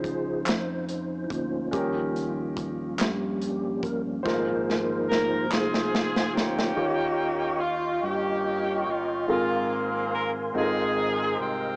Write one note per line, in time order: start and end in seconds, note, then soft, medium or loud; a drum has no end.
0.00 0.42 C#2 medium
0.00 0.42 C#3 soft
0.00 1.68 F3 soft
0.00 0.43 C#4 soft
0.00 1.67 C#4 medium
0.00 1.68 D#4 soft
0.00 1.68 D#4 medium
0.00 0.42 F4 soft
0.00 1.69 F4 medium
0.00 0.42 G#4 medium
0.00 1.69 C5 medium
0.00 1.70 C5 medium
0.04 kick medium
0.04 closed hi-hat soft
0.46 1.26 F2 medium
0.46 snare medium
0.46 clap medium
0.46 closed hi-hat medium
0.89 closed hi-hat soft
1.24 1.31 E4 medium
1.30 1.69 D2 medium
1.30 2.95 A#3 medium
1.30 1.71 C#4 medium
1.30 3.05 F4 medium
1.30 kick medium
1.30 closed hi-hat soft
1.71 2.95 D#2 medium
1.71 2.95 D#3 soft
1.71 4.20 F3 soft
1.71 4.21 G3 soft
1.71 4.20 C#4 medium
1.71 2.99 C#4 medium
1.71 4.21 D#4 medium
1.71 4.21 G4 soft
1.71 kick medium
1.71 closed hi-hat medium
1.75 4.22 A#4 medium
2.16 closed hi-hat soft
2.57 kick medium
2.57 closed hi-hat medium
2.98 3.79 G2 medium
2.98 4.22 A#3 medium
2.98 4.22 C#4 medium
2.98 3.86 G4 medium
2.98 snare medium
2.98 clap medium
2.98 closed hi-hat medium
3.42 closed hi-hat soft
3.82 4.21 G1 medium
3.82 4.02 A#4 medium
3.82 kick medium
3.82 closed hi-hat soft
4.23 5.47 G#1 medium
4.23 5.47 G#2 medium
4.23 6.72 F3 soft
4.23 6.74 G#3 medium
4.23 6.73 A#3 soft
4.23 5.47 D#4 medium
4.23 5.47 F4 medium
4.23 6.73 F4 medium
4.23 5.55 A#4 medium
4.23 6.72 C5 medium
4.23 6.73 C5 soft
4.23 kick medium
4.27 6.75 A#4 medium
4.27 snare soft
4.70 snare medium
5.09 5.48 A#4 medium
5.09 snare medium
5.51 6.35 C2 medium
5.51 6.73 C4 medium
5.51 6.74 D#4 soft
5.51 6.73 F4 medium
5.51 6.74 F4 soft
5.51 6.35 G#4 medium
5.51 6.42 G#4 medium
5.51 snare medium
5.51 clap medium
5.74 snare medium
5.95 snare medium
6.16 snare medium
6.34 6.74 D2 medium
6.34 7.57 A#3 medium
6.34 7.57 C#4 medium
6.34 7.61 G4 medium
6.34 snare medium
6.59 snare medium
6.75 7.99 D#2 medium
6.75 7.99 D#3 medium
6.75 9.24 D#4 soft
6.75 9.25 F4 soft
6.75 9.27 F4 medium
6.75 9.26 G4 medium
6.75 9.27 D#5 soft
6.75 9.26 G5 soft
6.75 9.27 C#6 medium
6.79 9.26 C#5 medium
7.60 8.03 F4 medium
8.03 8.83 G2 medium
8.03 9.26 A#3 medium
8.03 9.26 C#4 medium
8.03 8.88 G4 medium
8.87 9.26 G1 medium
8.87 9.29 F4 medium
9.28 10.51 G#1 medium
9.28 10.51 G#2 medium
9.28 10.53 A#3 medium
9.28 10.52 C4 medium
9.28 10.53 F4 medium
9.28 9.83 F4 medium
9.28 10.55 G#4 soft
9.28 11.76 A#4 medium
9.28 10.56 A#4 medium
9.28 10.54 F5 soft
9.28 10.54 G#5 medium
9.28 11.76 C6 medium
10.15 10.31 A#4 medium
10.54 11.35 G#1 medium
10.54 11.76 G#2 medium
10.54 11.76 C4 medium
10.54 11.76 D#4 soft
10.54 11.76 F4 medium
10.54 10.62 A4 soft
10.54 11.76 D#5 soft
10.54 11.76 F5 medium
10.58 11.41 C4 medium
10.58 11.76 D#4 medium
10.58 11.37 G#4 medium
10.58 11.76 A#4 medium
11.39 11.76 C2 medium
11.39 11.76 C4 medium
11.39 11.76 G4 medium